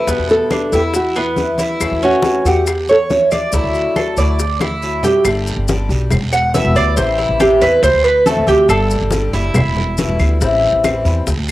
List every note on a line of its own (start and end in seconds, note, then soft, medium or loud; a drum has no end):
0.00 0.30 B4 medium
0.07 0.18 E2 medium
0.07 0.72 B2 medium
0.07 0.73 D3 medium
0.07 0.73 G3 medium
0.07 0.50 B3 medium
0.07 0.72 B3 medium
0.07 0.72 E4 medium
0.07 high bongo medium
0.07 high conga soft
0.07 long guiro medium
0.07 maracas medium
0.18 0.39 E2 medium
0.29 0.71 A4 loud
0.29 high bongo soft
0.29 high conga soft
0.29 maracas soft
0.51 0.72 D4 medium
0.51 high bongo medium
0.51 high conga medium
0.51 short guiro medium
0.51 claves medium
0.51 maracas soft
0.72 1.55 E2 medium
0.72 0.93 D3 medium
0.72 0.93 G3 medium
0.72 0.93 B3 medium
0.72 1.15 E4 medium
0.72 0.94 E4 medium
0.72 0.80 G4 medium
0.72 high bongo soft
0.72 high conga soft
0.72 short guiro medium
0.72 maracas medium
0.94 1.15 F#4 medium
0.94 muted steel-string acoustic guitar stroke soft
0.94 high bongo medium
0.94 high conga soft
0.94 long guiro medium
0.94 maracas medium
1.15 1.58 B3 medium
1.15 1.57 E4 medium
1.15 high conga soft
1.15 claves medium
1.15 maracas soft
1.36 1.80 D3 medium
1.36 1.80 G3 soft
1.36 1.81 B3 medium
1.36 1.81 E4 soft
1.36 high bongo soft
1.36 low bongo medium
1.36 high conga medium
1.36 short guiro medium
1.36 maracas soft
1.58 2.01 E4 medium
1.58 high bongo soft
1.58 high conga medium
1.58 short guiro medium
1.58 maracas medium
1.80 1.91 E2 medium
1.80 2.48 E3 medium
1.80 2.46 A3 medium
1.80 2.45 C#4 medium
1.80 2.45 F#4 medium
1.80 high bongo medium
1.80 high conga soft
1.80 long guiro medium
1.80 claves medium
1.80 maracas medium
1.92 2.12 E2 medium
2.02 2.44 C#4 medium
2.02 2.47 F#4 medium
2.02 high bongo soft
2.02 high conga soft
2.02 maracas soft
2.22 high bongo medium
2.22 high conga loud
2.22 short guiro medium
2.22 maracas soft
2.45 3.27 E2 medium
2.45 2.67 A3 medium
2.45 2.66 C#4 medium
2.45 2.66 F#4 medium
2.45 2.91 G4 medium
2.45 2.88 F#5 medium
2.45 high bongo soft
2.45 short guiro medium
2.45 maracas medium
2.66 muted steel-string acoustic guitar stroke medium
2.66 high bongo medium
2.66 high conga soft
2.66 long guiro medium
2.66 claves medium
2.66 maracas medium
2.88 2.96 A4 medium
2.88 3.31 C#5 medium
2.88 high conga soft
2.88 maracas soft
3.10 3.52 E3 soft
3.10 3.53 A3 soft
3.10 3.53 C#4 soft
3.10 3.53 F#4 medium
3.10 3.32 C#5 medium
3.10 high bongo soft
3.10 low bongo medium
3.10 high conga medium
3.10 short guiro medium
3.10 maracas soft
3.31 3.53 D5 medium
3.31 4.14 D5 loud
3.31 high bongo soft
3.31 high conga medium
3.31 short guiro medium
3.31 claves medium
3.31 maracas medium
3.52 3.63 D2 medium
3.52 4.17 D3 medium
3.52 4.17 F#3 medium
3.52 4.17 A3 medium
3.52 3.95 E4 medium
3.52 4.17 E4 medium
3.52 4.17 F#4 medium
3.52 high bongo medium
3.52 high conga soft
3.52 long guiro medium
3.52 maracas medium
3.63 3.84 D2 medium
3.74 high bongo soft
3.74 high conga soft
3.74 maracas soft
3.96 4.17 A4 medium
3.96 high bongo medium
3.96 high conga loud
3.96 short guiro medium
3.96 claves medium
3.96 maracas soft
4.17 5.00 D2 medium
4.17 4.39 F#3 medium
4.17 4.39 A3 medium
4.17 4.39 E4 medium
4.17 4.39 F#4 medium
4.17 4.60 D5 medium
4.17 high bongo soft
4.17 high conga soft
4.17 short guiro medium
4.17 maracas medium
4.39 muted steel-string acoustic guitar stroke medium
4.39 high bongo medium
4.39 high conga soft
4.39 long guiro medium
4.39 maracas medium
4.60 5.03 E4 medium
4.60 high bongo medium
4.60 high conga medium
4.60 claves medium
4.60 maracas soft
4.82 5.25 F#3 medium
4.82 5.25 A3 soft
4.82 5.25 E4 medium
4.82 5.25 F#4 medium
4.82 short guiro medium
4.82 maracas soft
5.03 5.25 G4 medium
5.03 low bongo medium
5.03 low conga loud
5.03 short guiro medium
5.03 maracas medium
5.25 5.56 G1 medium
5.25 5.67 D3 medium
5.25 5.68 G3 medium
5.25 5.68 D4 medium
5.25 5.69 G4 medium
5.25 high bongo medium
5.25 high conga soft
5.25 long guiro medium
5.25 claves medium
5.25 maracas medium
5.47 high bongo soft
5.47 high conga soft
5.47 maracas medium
5.57 5.88 G1 medium
5.68 5.89 D3 medium
5.68 5.90 G3 medium
5.68 5.89 D4 medium
5.68 5.88 G4 medium
5.68 high bongo medium
5.68 high conga loud
5.68 short guiro medium
5.68 maracas medium
5.89 6.10 B1 medium
5.89 6.11 G3 soft
5.89 6.11 D4 soft
5.89 6.10 G4 medium
5.89 high bongo soft
5.89 high conga soft
5.89 short guiro medium
5.89 maracas soft
6.11 6.21 E1 loud
6.11 muted steel-string acoustic guitar stroke medium
6.11 high bongo medium
6.11 high conga soft
6.11 low conga medium
6.11 long guiro medium
6.11 claves medium
6.11 maracas medium
6.22 6.63 E1 medium
6.33 6.54 F#5 medium
6.33 high bongo soft
6.33 high conga soft
6.33 maracas medium
6.54 6.75 B2 medium
6.54 6.75 D3 medium
6.54 6.75 G3 medium
6.54 6.75 B3 medium
6.54 6.75 E4 medium
6.54 6.75 E5 medium
6.54 high bongo soft
6.54 low bongo medium
6.54 high conga medium
6.54 short guiro medium
6.54 maracas medium
6.64 6.75 E1 medium
6.75 6.96 D2 loud
6.75 6.96 G3 soft
6.75 6.97 B3 soft
6.75 6.97 E4 soft
6.75 6.96 D5 loud
6.75 short guiro medium
6.75 claves medium
6.75 maracas soft
6.97 7.28 A1 medium
6.97 7.38 E3 medium
6.97 7.39 G3 medium
6.97 7.40 C4 medium
6.97 7.40 E4 medium
6.97 7.18 C5 medium
6.97 high bongo medium
6.97 high conga soft
6.97 long guiro medium
6.97 maracas medium
7.18 7.39 E4 medium
7.18 high bongo soft
7.18 high conga soft
7.29 7.60 A1 medium
7.40 7.61 E3 medium
7.40 7.61 G3 medium
7.40 7.61 C4 medium
7.40 7.61 E4 medium
7.40 7.61 G4 medium
7.40 high bongo medium
7.40 high conga loud
7.40 short guiro medium
7.40 claves medium
7.40 maracas medium
7.61 7.82 E2 medium
7.61 7.83 G3 soft
7.61 7.83 C4 soft
7.61 7.83 E4 medium
7.61 7.83 B4 loud
7.61 high bongo soft
7.61 short guiro medium
7.61 maracas soft
7.83 7.93 D2 loud
7.83 8.04 C5 loud
7.83 muted steel-string acoustic guitar stroke medium
7.83 high bongo medium
7.83 high conga soft
7.83 long guiro medium
7.83 maracas medium
7.93 8.35 D2 medium
8.04 8.25 B4 medium
8.04 high bongo soft
8.04 high conga soft
8.04 claves medium
8.26 8.47 D3 medium
8.26 8.47 A3 medium
8.26 8.48 C4 medium
8.26 8.47 F#4 medium
8.26 8.47 A4 medium
8.26 high bongo soft
8.26 low bongo medium
8.26 high conga medium
8.26 short guiro medium
8.26 maracas medium
8.37 8.47 D2 medium
8.47 8.68 D2 loud
8.47 8.69 A3 soft
8.47 8.69 C4 soft
8.47 8.69 F#4 soft
8.47 8.69 G4 medium
8.47 high conga medium
8.47 short guiro medium
8.47 maracas soft
8.68 9.00 G1 loud
8.68 9.11 D3 medium
8.68 9.12 G3 medium
8.68 9.12 D4 medium
8.68 9.12 G4 medium
8.68 9.30 A4 medium
8.68 high bongo medium
8.68 high conga soft
8.68 long guiro medium
8.68 claves medium
8.68 maracas medium
8.90 high bongo soft
8.90 high conga soft
8.90 maracas medium
9.01 9.32 G1 medium
9.11 9.33 D3 medium
9.11 9.33 G3 medium
9.11 9.34 D4 medium
9.11 9.32 G4 medium
9.11 high bongo medium
9.11 high conga loud
9.11 short guiro medium
9.11 maracas medium
9.33 9.54 F#1 medium
9.33 9.55 G3 soft
9.33 9.55 D4 soft
9.33 10.37 E4 medium
9.33 9.54 G4 soft
9.33 high bongo soft
9.33 high conga soft
9.33 short guiro medium
9.33 maracas soft
9.54 9.65 E1 loud
9.54 muted steel-string acoustic guitar stroke medium
9.54 high bongo medium
9.54 high conga soft
9.54 low conga medium
9.54 long guiro medium
9.54 claves medium
9.54 maracas medium
9.65 10.06 E1 medium
9.76 high bongo soft
9.76 high conga soft
9.76 low conga medium
9.98 10.19 B2 medium
9.98 10.20 D3 medium
9.98 10.19 G3 medium
9.98 10.19 B3 medium
9.98 10.18 E4 medium
9.98 high bongo soft
9.98 low bongo medium
9.98 high conga medium
9.98 short guiro medium
9.98 maracas medium
10.08 10.19 E1 medium
10.19 10.40 D2 loud
10.19 10.41 G3 soft
10.19 10.41 B3 soft
10.19 10.40 E4 soft
10.19 high conga medium
10.19 short guiro medium
10.19 claves medium
10.19 maracas soft
10.41 10.72 A1 loud
10.41 10.84 E3 medium
10.41 10.84 G3 medium
10.41 10.84 C4 medium
10.41 10.84 E4 medium
10.41 high bongo medium
10.41 high conga soft
10.41 long guiro medium
10.41 maracas medium
10.63 high bongo soft
10.63 high conga soft
10.72 11.04 A1 medium
10.84 11.05 E3 medium
10.84 11.06 G3 medium
10.84 11.06 C4 medium
10.84 11.05 E4 medium
10.84 high bongo medium
10.84 high conga medium
10.84 short guiro medium
10.84 claves medium
10.84 maracas medium
11.05 11.26 E2 medium
11.05 11.26 G3 medium
11.05 11.26 C4 medium
11.05 11.27 E4 soft
11.05 high bongo soft
11.05 short guiro medium
11.05 maracas soft
11.27 11.37 D2 loud
11.27 muted steel-string acoustic guitar stroke medium
11.27 high bongo medium
11.27 high conga soft
11.27 long guiro medium
11.27 maracas medium
11.37 11.51 D2 medium